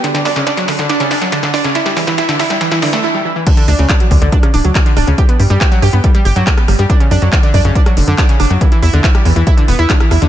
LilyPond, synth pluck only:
\new Staff \with { instrumentName = "Synth pluck" } { \clef bass \time 4/4 \key d \major \tempo 4 = 140 d16 d16 d'16 cis16 d'16 fis16 d16 d16 d'16 cis16 d'16 fis16 d16 d16 d'16 cis16 | e'16 g16 e16 e16 e'16 d16 e'16 g16 e16 e16 d16 a16 e'16 g16 e16 e16 | d16 d16 d'16 cis16 d'16 fis16 d16 d16 d'16 cis16 d'16 fis16 d16 d16 d'16 cis16 | g'16 b16 g16 g16 g'16 fis16 g'16 b16 g16 g16 g'16 fis16 g'16 b16 g16 g16 |
d'16 cis16 d'16 fis16 d16 d16 d'16 cis16 d'16 fis16 d16 d16 d'16 cis16 d'16 fis16 | e16 e16 e'16 d16 e'16 g16 e16 e16 e'16 d16 b16 e'16 d16 e16 e'16 d16 | }